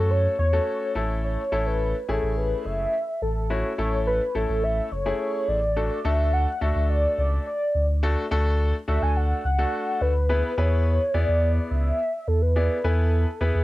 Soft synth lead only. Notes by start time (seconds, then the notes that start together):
Already playing: A4
0.11 C#5
0.39 C#5
1.24 C#5
1.66 B4
2.09 A4
2.37 B4
2.65 E5
3.22 A4
3.50 C#5
4.07 B4
4.35 A4
4.63 E5
4.92 C#5
5.48 D5
6.05 E5
6.33 F#5
6.62 E5
6.90 D5
7.18 D5
7.47 D5
8.88 E5
9.02 G#5
9.17 F#5
9.45 F#5
10.01 B4
10.58 C#5
11.14 D5
11.71 E5
12.28 A4
12.42 B4
12.84 A4
13.41 G#4